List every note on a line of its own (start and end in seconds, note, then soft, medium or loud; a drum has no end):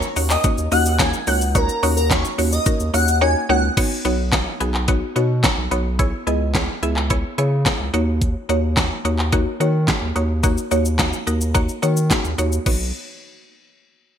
0.02 shaker medium
0.16 0.37 D#2 medium
0.16 0.34 A#3 medium
0.16 0.34 C#4 medium
0.16 0.34 D#4 medium
0.16 0.34 F#4 medium
0.16 0.34 C#5 medium
0.16 open hi-hat medium
0.16 shaker medium
0.30 0.41 D#5 medium
0.30 clap medium
0.30 shaker medium
0.44 0.62 A#3 medium
0.44 0.62 C#4 medium
0.44 0.62 D#4 medium
0.44 0.62 F#4 medium
0.44 0.62 C#5 medium
0.44 kick loud
0.44 closed hi-hat medium
0.44 shaker medium
0.58 0.68 D#2 loud
0.58 shaker medium
0.72 1.13 D#2 loud
0.72 0.89 A#3 medium
0.72 0.89 C#4 medium
0.72 0.90 D#4 medium
0.72 0.90 F#4 medium
0.72 0.90 D#5 medium
0.72 0.94 F#5 medium
0.72 open hi-hat medium
0.72 shaker medium
0.86 shaker medium
0.99 1.17 A#3 loud
0.99 1.17 C#4 medium
0.99 1.17 D#4 medium
0.99 1.17 F#4 medium
0.99 1.17 C#5 loud
0.99 1.11 G#5 medium
0.99 kick loud
0.99 snare loud
0.99 clap loud
0.99 closed hi-hat medium
0.99 shaker medium
1.14 shaker medium
1.27 1.69 C#2 loud
1.27 1.45 A#3 medium
1.27 1.45 C#4 medium
1.27 1.45 D#4 medium
1.27 1.45 F#4 medium
1.27 1.45 C#5 medium
1.27 1.38 F#5 medium
1.27 open hi-hat medium
1.27 shaker medium
1.41 shaker medium
1.55 1.73 A#3 loud
1.55 1.73 C#4 medium
1.55 1.73 D#4 medium
1.55 1.73 F#4 medium
1.55 1.77 A#4 loud
1.55 1.73 C#5 loud
1.55 kick loud
1.55 closed hi-hat medium
1.55 shaker medium
1.69 shaker medium
1.83 2.24 D#2 loud
1.83 2.01 A#3 loud
1.83 2.01 C#4 loud
1.83 2.01 D#4 medium
1.83 2.01 F#4 loud
1.83 2.01 C#5 loud
1.83 open hi-hat medium
1.83 shaker soft
1.97 2.07 A#4 medium
1.97 shaker medium
2.10 2.28 A#3 medium
2.10 2.28 C#4 medium
2.10 2.28 D#4 medium
2.10 2.28 F#4 medium
2.10 2.21 C#5 medium
2.10 2.29 C#5 medium
2.10 kick loud
2.10 snare medium
2.10 clap loud
2.10 closed hi-hat medium
2.10 shaker medium
2.25 shaker medium
2.38 2.59 D#2 medium
2.38 2.56 A#3 medium
2.38 2.56 C#4 medium
2.38 2.56 D#4 medium
2.38 2.56 F#4 medium
2.38 2.56 C#5 medium
2.38 open hi-hat medium
2.38 shaker medium
2.52 2.63 D#5 medium
2.52 shaker medium
2.66 2.84 A#3 medium
2.66 2.84 C#4 medium
2.66 2.84 D#4 medium
2.66 2.84 F#4 medium
2.66 2.84 A#4 medium
2.66 kick loud
2.66 closed hi-hat medium
2.66 shaker medium
2.80 2.90 D#2 loud
2.80 shaker medium
2.94 3.35 D#2 loud
2.94 3.12 A#3 medium
2.94 3.12 C#4 medium
2.94 3.12 D#4 medium
2.94 3.12 F#4 medium
2.94 3.12 C#5 medium
2.94 3.15 F#5 medium
2.94 open hi-hat medium
2.94 shaker medium
3.08 shaker medium
3.21 3.39 A#3 loud
3.21 3.39 C#4 medium
3.21 3.39 D#4 medium
3.21 3.39 F#4 medium
3.21 3.40 C#5 loud
3.21 3.32 G#5 medium
3.49 3.70 C#2 loud
3.49 3.67 A#3 medium
3.49 3.67 C#4 medium
3.49 3.67 D#4 medium
3.49 3.67 F#4 medium
3.49 3.67 C#5 medium
3.49 3.60 F#5 medium
3.77 3.95 B3 loud
3.77 3.95 D#4 loud
3.77 3.95 F#4 loud
3.77 3.95 C#5 loud
3.77 kick loud
3.77 closed hi-hat medium
3.77 crash medium
4.05 4.46 B1 loud
4.05 4.23 B3 medium
4.05 4.23 D#4 medium
4.05 4.23 F#4 medium
4.05 4.23 C#5 loud
4.05 closed hi-hat soft
4.32 4.50 B3 medium
4.32 4.51 D#4 medium
4.32 4.51 F#4 medium
4.32 4.51 C#5 loud
4.32 kick loud
4.32 snare medium
4.32 clap loud
4.32 closed hi-hat medium
4.60 5.02 B1 medium
4.60 4.78 B3 medium
4.60 4.78 D#4 medium
4.60 4.78 F#4 medium
4.60 4.78 G#4 loud
4.60 closed hi-hat medium
4.74 clap medium
4.88 5.06 B3 loud
4.88 5.06 D#4 loud
4.88 5.06 F#4 loud
4.88 5.06 C#5 loud
4.88 kick loud
4.88 closed hi-hat medium
5.16 5.47 B2 loud
5.16 5.34 B3 medium
5.16 5.34 D#4 medium
5.16 5.34 F#4 medium
5.16 5.34 C#5 loud
5.16 closed hi-hat soft
5.43 5.61 B3 medium
5.43 5.62 D#4 medium
5.43 5.62 F#4 medium
5.43 5.62 C#5 loud
5.43 kick loud
5.43 snare medium
5.43 clap loud
5.43 closed hi-hat medium
5.58 5.68 B1 medium
5.71 6.13 B1 loud
5.71 5.89 B3 medium
5.71 5.89 D#4 medium
5.71 5.89 F#4 medium
5.71 5.89 C#5 loud
5.71 closed hi-hat soft
5.99 6.17 B3 loud
5.99 6.17 E4 loud
5.99 6.17 G#4 loud
5.99 6.17 C#5 loud
5.99 kick loud
5.99 closed hi-hat medium
6.27 6.69 C#2 loud
6.27 6.45 B3 medium
6.27 6.45 E4 medium
6.27 6.45 G#4 medium
6.27 6.45 D#5 loud
6.27 closed hi-hat soft
6.55 6.73 B3 medium
6.55 6.73 E4 medium
6.55 6.73 G#4 medium
6.55 6.73 C#5 loud
6.55 kick loud
6.55 snare medium
6.55 clap loud
6.55 closed hi-hat medium
6.82 7.24 C#2 medium
6.82 7.00 B3 medium
6.82 7.01 E4 medium
6.82 7.01 G#4 medium
6.82 7.01 E5 loud
6.82 closed hi-hat medium
6.96 clap medium
7.10 7.28 B3 loud
7.10 7.28 E4 loud
7.10 7.28 G#4 loud
7.10 7.28 C#5 loud
7.10 kick loud
7.10 closed hi-hat medium
7.38 7.69 C#3 loud
7.38 7.56 B3 medium
7.38 7.56 E4 medium
7.38 7.56 G#4 medium
7.38 7.56 C#5 loud
7.38 closed hi-hat soft
7.66 7.84 B3 medium
7.66 7.84 E4 medium
7.66 7.84 G#4 medium
7.66 7.84 C#5 medium
7.66 kick loud
7.66 snare loud
7.66 clap loud
7.66 closed hi-hat medium
7.80 7.90 C#2 medium
7.93 8.35 D#2 loud
7.93 8.38 A#3 loud
7.93 8.38 D#4 medium
7.93 8.38 F#4 medium
7.93 8.38 C#5 loud
7.93 closed hi-hat soft
8.22 kick loud
8.22 closed hi-hat medium
8.49 8.91 D#2 loud
8.49 8.67 A#3 medium
8.49 8.67 D#4 medium
8.49 8.67 F#4 medium
8.49 8.67 C#5 loud
8.49 closed hi-hat soft
8.77 8.95 A#3 medium
8.77 8.95 D#4 medium
8.77 8.95 F#4 medium
8.77 8.95 C#5 loud
8.77 kick loud
8.77 snare medium
8.77 clap loud
8.77 closed hi-hat medium
9.05 9.46 D#2 loud
9.05 9.23 A#3 medium
9.05 9.23 D#4 medium
9.05 9.23 F#4 medium
9.05 9.23 C#5 loud
9.05 closed hi-hat medium
9.19 clap medium
9.32 9.50 A#3 loud
9.32 9.50 D#4 loud
9.32 9.51 F#4 loud
9.32 9.51 C#5 loud
9.32 kick loud
9.32 closed hi-hat medium
9.60 9.91 D#3 loud
9.60 9.78 A#3 medium
9.60 9.78 D#4 medium
9.60 9.78 F#4 medium
9.60 9.78 C#5 loud
9.60 closed hi-hat soft
9.88 10.06 A#3 medium
9.88 10.06 D#4 medium
9.88 10.06 F#4 medium
9.88 10.06 G#4 loud
9.88 kick loud
9.88 snare loud
9.88 clap loud
9.88 closed hi-hat medium
10.02 10.12 D#2 medium
10.16 10.57 D#2 loud
10.16 10.34 A#3 medium
10.16 10.34 D#4 medium
10.16 10.34 F#4 medium
10.16 10.34 C#5 loud
10.16 closed hi-hat soft
10.43 10.61 A#3 loud
10.43 10.62 D#4 loud
10.43 10.62 F#4 loud
10.43 10.62 C#5 loud
10.43 kick loud
10.43 closed hi-hat medium
10.43 shaker medium
10.58 shaker medium
10.71 11.13 D#2 loud
10.71 10.89 A#3 medium
10.71 10.89 D#4 medium
10.71 10.89 F#4 medium
10.71 10.89 C#5 loud
10.71 closed hi-hat soft
10.71 shaker soft
10.85 shaker medium
10.99 11.17 A#3 medium
10.99 11.17 D#4 medium
10.99 11.17 F#4 medium
10.99 11.17 C#5 loud
10.99 kick loud
10.99 snare medium
10.99 clap loud
10.99 closed hi-hat medium
10.99 shaker medium
11.13 shaker medium
11.27 11.69 D#2 medium
11.27 11.45 A#3 medium
11.27 11.45 D#4 medium
11.27 11.45 F#4 medium
11.27 11.45 A#4 loud
11.27 closed hi-hat medium
11.27 shaker medium
11.41 shaker medium
11.54 11.73 A#3 loud
11.54 11.73 D#4 loud
11.54 11.73 F#4 loud
11.54 11.73 C#5 loud
11.54 kick loud
11.54 closed hi-hat medium
11.54 shaker medium
11.69 shaker medium
11.82 12.14 D#3 loud
11.82 12.00 A#3 medium
11.82 12.00 D#4 medium
11.82 12.01 F#4 medium
11.82 12.01 C#5 loud
11.82 closed hi-hat soft
11.82 shaker soft
11.97 shaker medium
12.10 12.28 A#3 medium
12.10 12.28 D#4 medium
12.10 12.28 F#4 medium
12.10 12.29 G#4 loud
12.10 kick loud
12.10 snare loud
12.10 clap loud
12.10 closed hi-hat medium
12.10 shaker medium
12.25 12.35 D#2 medium
12.25 shaker medium
12.38 12.59 D#2 loud
12.38 12.56 A#3 medium
12.38 12.56 D#4 medium
12.38 12.56 F#4 medium
12.38 12.56 C#5 loud
12.38 closed hi-hat soft
12.38 shaker medium
12.52 shaker medium
12.66 12.92 B1 loud
12.66 12.92 B3 medium
12.66 12.92 D#4 medium
12.66 12.92 F#4 medium
12.66 12.92 C#5 medium
12.66 kick loud
12.66 crash medium